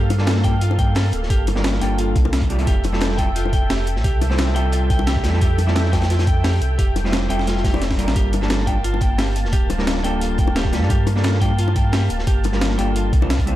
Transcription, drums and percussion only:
0.10 closed hi-hat, high bongo
0.18 snare
0.27 snare, closed hi-hat
0.36 snare
0.44 kick, closed hi-hat
0.61 closed hi-hat
0.71 high bongo
0.79 kick, closed hi-hat
0.95 snare, closed hi-hat, open hi-hat
1.12 closed hi-hat
1.23 snare
1.30 kick, closed hi-hat
1.47 closed hi-hat, high bongo
1.56 snare
1.64 snare, closed hi-hat
1.74 snare
1.81 closed hi-hat
1.98 closed hi-hat
2.16 kick, closed hi-hat
2.25 high bongo
2.33 snare, closed hi-hat
2.41 kick, closed hi-hat
2.50 closed hi-hat
2.59 closed hi-hat
2.67 kick, closed hi-hat
2.84 closed hi-hat, high bongo
2.93 snare
3.01 snare, closed hi-hat
3.11 snare
3.18 kick, closed hi-hat
3.36 closed hi-hat
3.45 high bongo
3.53 kick, closed hi-hat
3.70 snare, closed hi-hat, open hi-hat
3.87 closed hi-hat
3.96 snare
4.04 kick, closed hi-hat
4.21 closed hi-hat, high bongo
4.31 snare
4.38 snare, closed hi-hat
4.48 snare
4.56 closed hi-hat
4.72 closed hi-hat
4.90 kick, closed hi-hat
4.99 high bongo
5.07 snare, closed hi-hat
5.16 kick, snare
5.24 snare, closed hi-hat
5.33 snare
5.41 kick, closed hi-hat
5.58 closed hi-hat, high bongo
5.68 snare
5.76 snare, closed hi-hat
5.86 snare
5.93 kick, snare, closed hi-hat
6.02 snare, closed hi-hat
6.10 snare, closed hi-hat
6.19 snare, closed hi-hat, high bongo
6.27 kick, closed hi-hat
6.44 snare, closed hi-hat, open hi-hat
6.61 closed hi-hat
6.79 kick, closed hi-hat
6.96 closed hi-hat, high bongo
7.05 snare
7.12 snare, closed hi-hat
7.21 snare
7.30 closed hi-hat
7.39 snare
7.47 snare, closed hi-hat
7.56 snare
7.64 kick, snare, closed hi-hat, open hi-hat
7.74 high bongo
7.82 snare, closed hi-hat
7.91 kick, snare
7.99 closed hi-hat, high bongo
8.08 snare
8.16 kick, closed hi-hat
8.33 closed hi-hat, high bongo
8.42 snare
8.50 snare, closed hi-hat
8.59 snare
8.67 kick, closed hi-hat
8.84 closed hi-hat
8.94 high bongo
9.01 kick, closed hi-hat
9.18 snare, closed hi-hat, open hi-hat
9.36 closed hi-hat
9.45 snare
9.53 kick, closed hi-hat
9.70 closed hi-hat, high bongo
9.79 snare
9.87 snare, closed hi-hat
9.97 snare
10.04 closed hi-hat
10.21 closed hi-hat
10.38 kick, closed hi-hat
10.47 high bongo
10.56 snare, closed hi-hat
10.65 kick, snare
10.73 snare, closed hi-hat
10.82 snare
10.90 kick, closed hi-hat
11.07 closed hi-hat, high bongo
11.16 snare
11.24 snare, closed hi-hat
11.34 snare
11.41 kick, closed hi-hat
11.59 closed hi-hat
11.68 high bongo
11.76 kick, closed hi-hat
11.92 snare, closed hi-hat, open hi-hat
12.10 closed hi-hat
12.19 snare
12.27 kick, closed hi-hat
12.44 closed hi-hat, high bongo
12.52 snare
12.61 snare, closed hi-hat
12.71 snare
12.79 closed hi-hat
12.96 closed hi-hat
13.13 kick, closed hi-hat
13.22 high bongo
13.30 snare, closed hi-hat
13.39 kick, closed hi-hat
13.47 closed hi-hat

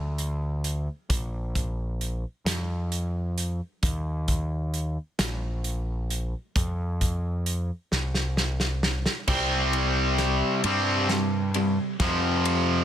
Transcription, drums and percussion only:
0.18 closed hi-hat
0.64 closed hi-hat
1.10 kick, closed hi-hat
1.55 kick, closed hi-hat
2.01 closed hi-hat
2.46 snare, closed hi-hat
2.92 closed hi-hat
3.38 closed hi-hat
3.83 kick, closed hi-hat
4.28 kick, closed hi-hat
4.74 closed hi-hat
5.19 snare, closed hi-hat
5.64 closed hi-hat
6.10 closed hi-hat
6.56 kick, closed hi-hat
7.01 kick, closed hi-hat
7.46 closed hi-hat
7.92 snare
8.14 snare
8.37 snare
8.60 snare
8.83 snare
9.06 snare
9.28 kick, snare, crash
9.73 ride
10.18 snare, ride
10.64 ride
11.09 snare, ride
11.54 ride
12.00 kick, snare, ride
12.45 ride

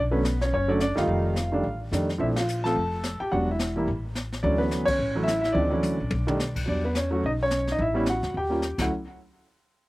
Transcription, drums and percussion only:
0.25 snare, hi-hat pedal
0.41 snare
0.53 brush sweep
0.80 snare, hi-hat pedal
0.97 snare
1.08 brush sweep
1.36 snare, hi-hat pedal
1.64 brush sweep
1.93 snare, hi-hat pedal
2.09 snare
2.20 brush sweep
2.36 snare, ride
2.49 hi-hat pedal
2.65 snare
2.76 brush sweep
3.03 snare, hi-hat pedal
3.31 brush sweep
3.59 snare, hi-hat pedal
3.88 brush sweep
4.15 snare, hi-hat pedal
4.32 snare
4.43 brush sweep
4.71 snare, hi-hat pedal
4.88 kick, ride
4.99 brush sweep
5.28 snare, hi-hat pedal
5.44 snare
5.55 brush sweep
5.83 hi-hat pedal, high tom
6.10 high tom
6.28 mid tom
6.40 snare, hi-hat pedal
6.56 kick, crash
6.67 brush sweep
6.95 snare, hi-hat pedal
7.23 brush sweep
7.50 snare, hi-hat pedal
7.67 snare
7.78 brush sweep
8.06 snare, hi-hat pedal
8.23 snare
8.34 brush sweep
8.62 snare, hi-hat pedal
8.78 kick, snare, crash

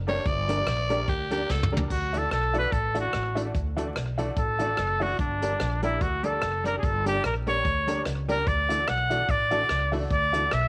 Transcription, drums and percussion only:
0.07 open hi-hat
0.26 kick, closed hi-hat
0.49 closed hi-hat
0.67 cross-stick, closed hi-hat
0.90 closed hi-hat
1.08 kick, closed hi-hat
1.31 closed hi-hat
1.49 snare
1.63 mid tom
1.77 floor tom
1.90 kick, crash
2.14 closed hi-hat
2.31 cross-stick, closed hi-hat
2.54 closed hi-hat
2.72 kick, closed hi-hat
2.95 closed hi-hat
3.13 cross-stick, closed hi-hat
3.37 closed hi-hat
3.55 kick, closed hi-hat
3.78 closed hi-hat
3.96 cross-stick, closed hi-hat
4.18 closed hi-hat
4.36 kick, closed hi-hat
4.59 closed hi-hat
4.77 cross-stick, closed hi-hat
5.01 open hi-hat
5.19 kick, closed hi-hat
5.42 closed hi-hat
5.60 cross-stick, closed hi-hat
5.82 closed hi-hat
6.01 kick, closed hi-hat
6.24 closed hi-hat
6.42 cross-stick, closed hi-hat
6.65 closed hi-hat
6.83 kick, closed hi-hat
7.06 closed hi-hat
7.24 cross-stick, closed hi-hat
7.47 closed hi-hat
7.65 kick, closed hi-hat
7.88 closed hi-hat
8.06 cross-stick, closed hi-hat
8.29 closed hi-hat
8.47 kick, closed hi-hat
8.70 closed hi-hat
8.87 cross-stick, closed hi-hat
9.10 closed hi-hat
9.29 kick, closed hi-hat
9.51 closed hi-hat
9.69 cross-stick, closed hi-hat
9.93 open hi-hat
10.11 kick, closed hi-hat
10.34 closed hi-hat
10.51 cross-stick, closed hi-hat

